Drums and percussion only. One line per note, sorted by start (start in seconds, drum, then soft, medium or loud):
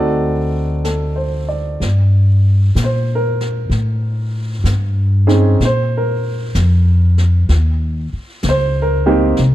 0.85 brush sweep soft
0.85 snare soft
0.85 hi-hat pedal soft
1.81 brush sweep soft
1.81 snare soft
2.76 snare soft
2.76 hi-hat pedal medium
3.41 snare soft
3.71 brush sweep soft
3.71 snare soft
4.65 snare medium
4.65 hi-hat pedal soft
5.29 snare soft
5.61 brush sweep soft
5.61 snare soft
6.55 snare medium
6.55 hi-hat pedal soft
7.18 snare soft
7.49 brush sweep soft
7.49 snare soft
8.43 snare medium
8.43 hi-hat pedal soft
9.37 brush sweep soft
9.37 snare soft